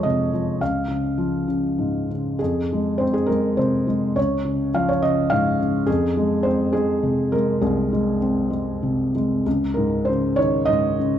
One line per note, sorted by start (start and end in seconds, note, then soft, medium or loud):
0.00 0.57 F2 medium
0.00 0.33 F3 soft
0.00 0.58 G#3 soft
0.00 0.63 C5 medium
0.00 0.62 C#5 medium
0.00 0.03 D#5 medium
0.00 0.62 D#5 medium
0.05 0.60 C3 soft
0.33 0.60 F3 soft
0.61 2.37 C#2 soft
0.61 2.06 F5 medium
0.88 1.46 C#3 soft
1.18 2.36 F3 soft
1.48 2.09 C#3 soft
1.79 2.38 G#2 soft
2.11 2.40 C#3 soft
2.39 4.13 F2 soft
2.39 3.01 G#4 medium
2.73 3.27 G#3 soft
2.98 4.14 C4 soft
2.98 3.14 C5 medium
3.14 3.29 G#4 medium
3.26 3.86 G#3 soft
3.26 3.58 A#4 medium
3.57 4.15 C3 soft
3.57 4.18 C5 medium
3.87 4.16 G#3 soft
4.16 5.83 C#2 soft
4.16 4.70 C#5 medium
4.45 5.01 C#3 soft
4.74 5.84 F3 soft
4.74 4.89 F5 medium
4.89 5.03 C#5 medium
5.02 5.59 C#3 soft
5.02 5.31 D#5 medium
5.30 5.86 G#2 soft
5.30 5.89 F5 medium
5.60 5.87 C#3 soft
5.87 7.57 F2 medium
5.87 6.46 G#4 medium
6.17 6.73 G#3 soft
6.43 7.58 C4 soft
6.43 6.73 C5 medium
6.73 7.31 G#3 soft
6.73 7.33 G#4 medium
7.03 8.18 C3 soft
7.32 7.91 G#3 soft
7.32 7.62 A#4 medium
7.61 9.42 C2 soft
7.61 9.11 G#4 medium
7.93 8.49 G#3 soft
8.22 9.43 C4 soft
8.50 9.14 G#3 soft
8.83 9.44 C3 soft
9.15 9.45 G#3 soft
9.46 11.19 C#2 medium
9.74 10.67 G#2 soft
9.74 10.07 A#4 medium
10.05 10.38 C5 medium
10.09 10.98 C#3 soft
10.36 11.19 D#3 soft
10.36 10.68 C#5 medium
10.65 11.19 G#2 soft
10.65 11.19 D#5 medium
10.99 11.19 C#3 soft